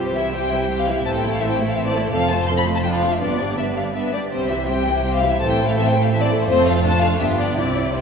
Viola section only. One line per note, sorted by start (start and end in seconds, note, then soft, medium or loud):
0.00 0.14 G3 soft
0.00 0.14 C4 soft
0.15 0.34 E3 soft
0.15 0.32 G3 soft
0.33 0.50 G3 soft
0.33 0.52 C4 soft
0.51 0.70 E3 soft
0.51 0.69 G3 soft
0.70 0.87 G3 soft
0.70 0.87 C4 soft
0.88 1.04 E3 soft
0.88 1.06 G3 soft
1.05 1.23 E3 soft
1.05 1.23 C4 soft
1.24 1.42 A3 soft
1.42 1.60 E3 soft
1.42 1.60 C4 soft
1.60 1.78 A3 soft
1.77 1.94 E3 soft
1.77 1.95 C4 soft
1.96 2.14 A3 soft
2.13 2.30 F3 soft
2.13 2.30 C4 soft
2.31 2.49 A3 soft
2.48 2.67 F3 soft
2.48 2.67 C4 soft
2.67 2.85 A3 soft
2.84 3.02 F3 soft
2.84 3.02 D4 soft
3.02 3.21 A3 soft
3.02 3.21 F4 soft
3.20 3.38 B3 soft
3.20 3.38 D4 soft
3.39 3.58 G3 soft
3.39 3.56 B3 soft
3.57 3.75 B3 soft
3.57 3.76 D4 soft
3.76 3.95 G3 soft
3.76 3.93 B3 soft
3.94 4.12 B3 soft
3.94 4.12 D4 soft
4.13 4.31 G3 soft
4.13 4.32 B3 soft
4.32 4.50 G3 soft
4.32 4.50 C4 soft
4.51 4.70 E3 soft
4.51 4.68 G3 soft
4.69 4.86 G3 soft
4.69 4.88 C4 soft
4.88 5.06 E3 soft
4.88 5.04 G3 soft
5.05 5.22 G3 soft
5.05 5.23 C4 soft
5.23 5.40 E3 soft
5.23 5.42 G3 soft
5.42 5.58 E3 soft
5.42 5.58 C4 soft
5.60 5.78 A3 soft
5.77 5.95 E3 soft
5.77 5.95 C4 soft
5.95 6.13 A3 soft
6.13 6.30 E3 soft
6.13 6.30 C4 soft
6.31 6.48 A3 soft
6.49 6.82 A3 medium
6.49 6.82 C4 medium
6.85 7.20 A3 medium
6.85 7.19 D4 medium
7.20 7.58 B3 medium
7.20 7.57 D4 soft
7.58 7.93 C4 soft
7.58 7.93 E4 soft
7.94 8.01 C4 soft
7.94 8.01 E4 soft